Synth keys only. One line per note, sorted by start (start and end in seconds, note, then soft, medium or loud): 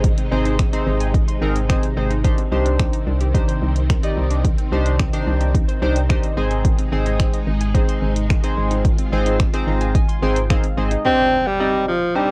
0.31 0.55 C4 loud
0.31 0.55 D#4 medium
0.31 0.55 G#4 medium
0.31 0.55 C5 loud
0.73 1.12 C4 loud
0.73 1.12 D#4 medium
0.73 1.12 G#4 medium
0.73 1.12 C5 loud
1.42 1.57 C4 loud
1.42 1.57 D#4 loud
1.42 1.57 G#4 medium
1.42 1.57 A#4 loud
1.69 1.85 C4 medium
1.69 1.85 D#4 medium
1.69 1.85 G#4 medium
1.69 1.85 C5 loud
1.97 2.12 C4 medium
1.97 2.12 D#4 medium
1.97 2.12 G#4 medium
1.97 2.12 C5 medium
2.24 2.40 D4 medium
2.24 2.40 D#4 medium
2.24 2.40 G4 medium
2.24 2.40 C5 loud
2.52 2.98 D4 medium
2.52 2.98 D#4 medium
2.52 2.98 G4 medium
2.52 2.99 C5 loud
3.34 3.73 D4 medium
3.34 3.73 D#4 medium
3.34 3.73 G4 medium
3.34 3.73 C5 loud
4.03 4.42 D#4 medium
4.03 4.42 G4 medium
4.03 4.42 D5 medium
4.03 4.42 D#5 loud
4.72 4.95 D4 loud
4.72 4.95 D#4 medium
4.72 4.95 G4 medium
4.72 4.96 C5 loud
5.13 5.52 D4 loud
5.13 5.52 D#4 medium
5.13 5.52 G4 medium
5.13 5.52 C5 loud
5.82 5.98 D4 loud
5.82 5.98 D#4 medium
5.82 5.98 G4 medium
5.82 5.98 C5 loud
6.09 6.25 D4 medium
6.09 6.25 D#4 medium
6.09 6.25 G4 medium
6.09 6.25 C5 loud
6.09 6.35 D#5 medium
6.37 6.81 C4 loud
6.37 6.81 D#4 medium
6.37 6.81 G#4 medium
6.37 6.81 C5 loud
6.37 6.63 G#5 medium
6.92 7.39 C4 medium
6.92 7.39 D#4 medium
6.92 7.39 G#4 medium
6.92 7.39 C5 loud
7.74 8.13 C4 medium
7.74 8.13 D#4 medium
7.74 8.14 G#4 medium
7.74 8.14 C5 medium
8.43 8.82 C4 medium
8.43 8.82 D#4 medium
8.43 8.82 G#4 medium
8.43 8.83 C5 loud
9.12 9.36 C4 loud
9.12 9.36 D#4 medium
9.12 9.36 G#4 medium
9.12 9.36 C5 loud
9.53 9.92 C4 loud
9.53 9.92 D#4 medium
9.53 9.93 G#4 medium
9.53 9.93 C5 loud
9.68 9.93 A#5 medium
9.95 10.21 G#5 medium
10.22 10.38 C4 loud
10.22 10.38 D#4 loud
10.22 10.38 G#4 loud
10.22 10.38 C5 loud
10.22 10.48 G5 medium
10.50 10.65 C4 loud
10.50 10.66 D#4 medium
10.50 10.66 G#4 medium
10.50 10.66 C5 loud
10.50 10.76 F5 medium
10.77 10.93 C4 medium
10.77 10.93 D#4 medium
10.77 10.93 G#4 medium
10.77 10.93 C5 loud
10.77 11.03 D#5 medium
11.05 11.36 C4 medium
11.05 11.36 D4 medium
11.05 11.36 D#4 medium
11.05 11.36 G4 medium
11.05 11.36 C5 medium
11.60 11.91 C4 medium
11.60 11.91 D#4 medium
11.60 11.91 G4 medium
11.60 11.91 D5 medium
11.60 11.91 D#5 medium
12.15 12.31 C4 medium
12.15 12.31 D4 medium
12.15 12.31 D#4 medium
12.15 12.31 G4 medium
12.15 12.31 C5 medium